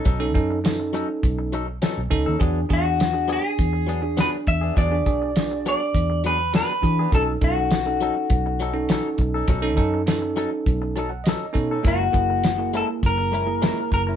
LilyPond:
<<
  \new Staff \with { instrumentName = "Clean electric guitar" } { \time 4/4 \key b \mixolydian \tempo 4 = 102 r1 | r8 fis'4 gis'4. b'8 e''8 | d''4. d''4 b'8 b'4 | a'8 fis'2. r8 |
r1 | fis'4. a'8 ais'4. ais'8 | }
  \new Staff \with { instrumentName = "Tine electric piano" } { \time 4/4 \key b \mixolydian r16 <cis' dis' a'>16 <cis' dis' a'>8 <cis' dis' a'>4. r4 <cis' dis' a'>8 | <d' fis' gis'>8 <d' fis' gis'>8 r16 <d' fis' gis'>4~ <d' fis' gis'>16 r16 <d' fis' gis'>4~ <d' fis' gis'>16 | r16 <d' fis' gis'>16 <d' fis' gis'>8 <d' fis' gis'>4. r4 <d' fis' gis'>8 | <cis' dis' a'>8 <cis' dis' a'>8 r16 <cis' dis' a'>4~ <cis' dis' a'>16 r16 <cis' dis' a'>4~ <cis' dis' a'>16 |
r16 <cis' dis' a'>16 <cis' dis' a'>8 <cis' dis' a'>4. a''16 fis''16 dis''8 <cis' dis' a' cis''>8 | <ais e' gis'>8 <ais e' gis'>8 r16 <ais e' gis'>4~ <ais e' gis'>16 r16 <ais e' gis'>4~ <ais e' gis'>16 | }
  \new Staff \with { instrumentName = "Clean electric guitar" } { \time 4/4 \key b \mixolydian <fis cis' dis' a'>16 r4 r16 <fis cis' dis' a'>16 r8. <fis cis' dis' a'>16 r16 <fis cis' dis' a'>16 r8 <cis' dis' a'>16 | <fis b d' gis'>16 r4 r16 <fis b d' gis'>16 r8. <fis b d' gis'>16 r16 <fis b d' gis'>16 r8 <b d' gis'>16 | <fis b d' gis'>16 r4 r16 <fis b d' gis'>16 r8. <fis b d' gis'>16 r16 <fis b d' gis'>16 r8 <b d' gis'>16 | <fis cis' dis' a'>16 r4 r16 <fis cis' dis' a'>16 r8. <fis cis' dis' a'>16 r16 <fis cis' dis' a'>16 r8 <cis' dis' a'>16 |
<fis cis' dis' a'>16 r4 r16 <fis cis' dis' a'>16 r8. <fis cis' dis' a'>16 r16 <fis cis' dis' a'>16 r8 <cis' dis' a'>16 | <gis cis' e' ais'>16 r4 r16 <gis cis' e' ais'>16 r8. <gis cis' e' ais'>16 r16 <gis cis' e' ais'>16 r8 <cis' e' ais'>16 | }
  \new Staff \with { instrumentName = "Fingered electric bass" } { \clef bass \time 4/4 \key b \mixolydian b,,8 fis,4. b,,4~ b,,16 b,,16 cis,16 dis,16 | e,8 e,4. e,4. e,8 | e,8 b,,4. e,4. e8 | b,,8 b,,4. b,,4. b,,8 |
b,,8 fis,4. b,,4. b,8 | fis,,8 fis,,4. fis,,4. fis,,8 | }
  \new DrumStaff \with { instrumentName = "Drums" } \drummode { \time 4/4 <hh bd>8 <hh bd>8 <hh sn tamb>8 hh8 <hh bd>8 hh8 <hh sn tamb>8 <hh bd>8 | <hh bd>8 <hh bd>8 <hh sn tamb>8 hh8 <hh bd>8 hh8 <hh sn tamb>8 <hh bd>8 | <hh bd>8 <hh bd>8 <hh sn tamb>8 hh8 <hh bd>8 hh8 <hh sn tamb>8 <hh bd>8 | <hh bd>8 <hh bd>8 <hh sn tamb>8 hh8 <hh bd>8 hh8 <hh sn tamb>8 <hh bd>8 |
<hh bd>8 <hh bd>8 <hh sn tamb>8 hh8 <hh bd>8 hh8 <hh sn tamb>8 <hh bd>8 | <hh bd>8 <hh bd>8 <hh sn tamb>8 hh8 <hh bd>8 hh8 <hh sn tamb>8 <hh bd>8 | }
>>